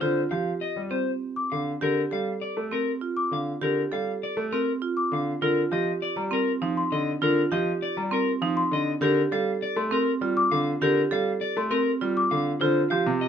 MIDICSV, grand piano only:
0, 0, Header, 1, 2, 480
1, 0, Start_track
1, 0, Key_signature, -2, "major"
1, 0, Tempo, 600000
1, 13, Time_signature, 3, 2, 24, 8
1, 10627, End_track
2, 0, Start_track
2, 0, Title_t, "Grand piano"
2, 0, Program_c, 0, 0
2, 14, Note_on_c, 0, 50, 72
2, 169, Note_off_c, 0, 50, 0
2, 253, Note_on_c, 0, 53, 49
2, 409, Note_off_c, 0, 53, 0
2, 610, Note_on_c, 0, 55, 51
2, 768, Note_off_c, 0, 55, 0
2, 1216, Note_on_c, 0, 50, 53
2, 1370, Note_off_c, 0, 50, 0
2, 1454, Note_on_c, 0, 50, 67
2, 1609, Note_off_c, 0, 50, 0
2, 1696, Note_on_c, 0, 55, 52
2, 1850, Note_off_c, 0, 55, 0
2, 2054, Note_on_c, 0, 57, 52
2, 2209, Note_off_c, 0, 57, 0
2, 2650, Note_on_c, 0, 50, 49
2, 2808, Note_off_c, 0, 50, 0
2, 2891, Note_on_c, 0, 50, 61
2, 3048, Note_off_c, 0, 50, 0
2, 3137, Note_on_c, 0, 55, 46
2, 3290, Note_off_c, 0, 55, 0
2, 3495, Note_on_c, 0, 57, 56
2, 3649, Note_off_c, 0, 57, 0
2, 4093, Note_on_c, 0, 50, 60
2, 4249, Note_off_c, 0, 50, 0
2, 4333, Note_on_c, 0, 50, 66
2, 4489, Note_off_c, 0, 50, 0
2, 4572, Note_on_c, 0, 53, 53
2, 4729, Note_off_c, 0, 53, 0
2, 4930, Note_on_c, 0, 55, 57
2, 5088, Note_off_c, 0, 55, 0
2, 5292, Note_on_c, 0, 53, 62
2, 5449, Note_off_c, 0, 53, 0
2, 5534, Note_on_c, 0, 50, 66
2, 5689, Note_off_c, 0, 50, 0
2, 5773, Note_on_c, 0, 50, 82
2, 5929, Note_off_c, 0, 50, 0
2, 6013, Note_on_c, 0, 53, 60
2, 6169, Note_off_c, 0, 53, 0
2, 6374, Note_on_c, 0, 55, 60
2, 6529, Note_off_c, 0, 55, 0
2, 6732, Note_on_c, 0, 53, 66
2, 6889, Note_off_c, 0, 53, 0
2, 6971, Note_on_c, 0, 50, 67
2, 7128, Note_off_c, 0, 50, 0
2, 7207, Note_on_c, 0, 50, 87
2, 7367, Note_off_c, 0, 50, 0
2, 7453, Note_on_c, 0, 55, 60
2, 7609, Note_off_c, 0, 55, 0
2, 7811, Note_on_c, 0, 57, 66
2, 7968, Note_off_c, 0, 57, 0
2, 8169, Note_on_c, 0, 55, 66
2, 8328, Note_off_c, 0, 55, 0
2, 8412, Note_on_c, 0, 50, 70
2, 8568, Note_off_c, 0, 50, 0
2, 8651, Note_on_c, 0, 50, 83
2, 8808, Note_off_c, 0, 50, 0
2, 8894, Note_on_c, 0, 55, 64
2, 9049, Note_off_c, 0, 55, 0
2, 9253, Note_on_c, 0, 57, 63
2, 9409, Note_off_c, 0, 57, 0
2, 9612, Note_on_c, 0, 55, 67
2, 9769, Note_off_c, 0, 55, 0
2, 9852, Note_on_c, 0, 50, 70
2, 10009, Note_off_c, 0, 50, 0
2, 10094, Note_on_c, 0, 50, 79
2, 10249, Note_off_c, 0, 50, 0
2, 10332, Note_on_c, 0, 53, 54
2, 10451, Note_on_c, 0, 48, 78
2, 10489, Note_off_c, 0, 53, 0
2, 10608, Note_off_c, 0, 48, 0
2, 10627, End_track
0, 0, End_of_file